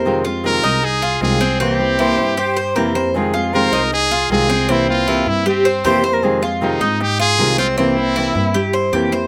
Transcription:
<<
  \new Staff \with { instrumentName = "Flute" } { \time 4/4 \key f \minor \tempo 4 = 156 bes'8 r2. r8 | r4 c''4 c''4 bes'4 | aes'4 c''8. r2 r16 | r2. c''8. bes'16 |
aes'8. r2. r16 | r1 | }
  \new Staff \with { instrumentName = "Trumpet" } { \time 4/4 \key f \minor r4 bes'4 aes'4 aes'4 | g'2.~ g'8 r8 | r4 bes'4 aes'4 aes'4 | e'8 f'4 e'8 c'4. r8 |
r4 ees'4 g'8 aes'4 f'8 | e'2. r4 | }
  \new Staff \with { instrumentName = "Cuban tres" } { \time 4/4 \key f \minor c''8 f'4 ees'4 f'4 c'8 | c'4 e'4 g'8 c''8 g'8 c''8 | r8 f'4 ees'4 f'4 c'8 | c'4 e'4 g'8 c''8 g'8 c''8~ |
c''8 f'4 ees'4 f'4 c'8 | c'4 e'4 g'8 c''8 g'8 c''8 | }
  \new Staff \with { instrumentName = "Nylon-string guitar" } { \time 4/4 \key f \minor <c ees aes c' f'>8 <aes c' f'>8 <c ees aes c' f'>8 <aes c' f'>8 r4 <c ees aes c' f'>8 <aes c' f'>8 | <c e bes c' e'>8 <bes c' e'>8 <c e bes c' e'>8 <bes c' e'>8 r4 <c e bes c' e'>8 <bes c' e'>8 | <c ees aes c' f'>8 <aes c' f'>8 <c ees aes c' f'>8 <aes c' f'>8 r4 <c ees aes c' f'>8 <aes c' f'>8 | <c e bes c' e'>8 <bes c' e'>8 <c e bes c' e'>8 e'8 r4 <c e bes c' e'>8 <c' e'>8 |
<c ees aes c' f'>8 <aes c' f'>8 <c ees aes c' f'>8 <aes c' f'>8 r4 <c ees aes c' f'>8 <aes c' f'>8 | <c e bes c' e'>8 <bes c' e'>8 <c e bes c' e'>8 <bes c' e'>8 r4 <c e bes c' e'>8 <bes c' e'>8 | }
  \new Staff \with { instrumentName = "Upright bass" } { \clef bass \time 4/4 \key f \minor f,4. c,4. c,4~ | c,4. g,4. f,4~ | f,4. c,4. c,4~ | c,4. g,4. f,4~ |
f,4. aes,4. c,4~ | c,4. g,4. f,4 | }
>>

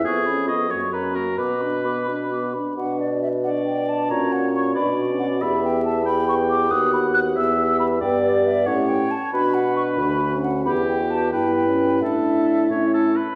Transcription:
<<
  \new Staff \with { instrumentName = "Flute" } { \time 6/8 \key b \minor \tempo 4. = 91 cis'''8 b''8 cis'''8 cis'''8 ais''8 cis'''8 | d'''8 b''8 d'''8 b''8 d'''8 b''8 | fis''8 d''8 e''8 fis''8 g''8 a''8 | ais''8 fis''8 cis'''8 b''4 fis''8 |
b''8 g''8 a''8 b''8 cis'''8 d'''8 | dis'''8 b''8 fis'''8 e'''4 b''8 | \key a \mixolydian g''8 d''8 e''8 fis''8 g''8 a''8 | b''8 fis''8 cis'''8 b''4 fis''8 |
b''8 g''8 a''8 g''8 g''4 | e''2~ e''8 r8 | }
  \new Staff \with { instrumentName = "Oboe" } { \time 6/8 \key b \minor gis'4 dis''8 cis''8 b'8 ais'8 | b'2~ b'8 r8 | r4. d''4. | cis''4. d''4. |
e''4. g''4. | fis''4. e''4. | \key a \mixolydian d''4. cis''4. | b'2~ b'8 r8 |
g'4. b'4. | a'4. cis''8 a'8 b'8 | }
  \new Staff \with { instrumentName = "Clarinet" } { \time 6/8 \key b \minor gis'8 eis'8 gis'8 fis'8 ais'8 fis'8 | fis'8 b'8 fis'8 b'8 fis'8 b'8 | fis'4. fis'4. | fis'4. fis'4. |
g'4. g'4. | fis'4. g'4. | \key a \mixolydian g'4. g'4 r8 | fis'4. fis'4. |
g'8. fis'8. e'4. | e'4. e'4 r8 | }
  \new Staff \with { instrumentName = "French horn" } { \time 6/8 \key b \minor b8 cis'8 b8 ais8 cis'8 ais8 | b8 d'8 b8 d'8 b8 d'8 | d'4. d'4. | cis'4. d'8. cis'8. |
b4. b4. | b4. b4. | \key a \mixolydian b4. cis'4 r8 | d'4. d'8. cis'8. |
b4. b8. cis'8. | d'4. cis'4 r8 | }
  \new Staff \with { instrumentName = "Bassoon" } { \clef bass \time 6/8 \key b \minor eis,4. fis,4. | b,2~ b,8 r8 | b,2. | ais,4. b,4. |
e,2. | dis,4. e,4. | \key a \mixolydian g,4. a,4 r8 | b,4. d,4. |
e,4. g,4. | a,4. a,4 r8 | }
>>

